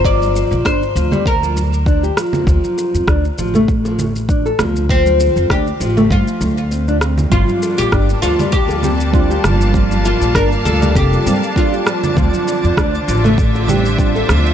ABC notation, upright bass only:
X:1
M:4/4
L:1/16
Q:"Swing 16ths" 1/4=99
K:Gdor
V:1 name="Upright bass" clef=bass
G,,,2 z B,,, G,,, z D,,6- D,, z3 | D,, z2 F,, D,, z A,,,6- A,,, z D,,2- | D,,2 z F,, D,, z A,,,2 G,, z D,,4- D,, z | G,,, z2 B,,, G,,, z D,,6- D,, z G,,,2- |
G,,,2 z B,,, G,,, z D,,2 F,,, z G,, z4 z | D,, z2 F,, D,, z A,,,6- A,,, z D,,2 |]